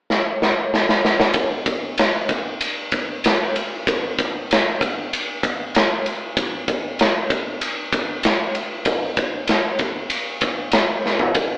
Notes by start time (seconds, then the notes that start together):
0.10 snare
0.42 snare
0.74 snare
0.89 snare
1.05 snare
1.20 snare
1.34 kick, ride
1.66 kick, ride
1.98 snare, ride
2.29 kick, ride
2.61 ride
2.92 kick, ride
3.24 snare, ride
3.56 ride
3.87 kick, ride
4.19 kick, ride
4.51 snare, ride
4.81 kick, ride
5.13 ride
5.43 kick, ride
5.75 snare, ride
6.06 ride
6.37 kick, ride
6.68 kick, ride
6.99 snare, ride
7.30 kick, ride
7.61 ride
7.93 kick, ride
8.23 snare, ride
8.55 ride
8.85 kick, ride
9.17 kick, ride
9.47 snare, ride
9.79 kick, ride
10.10 ride
10.41 kick, ride
10.72 snare, ride
11.06 snare
11.19 floor tom
11.35 kick, ride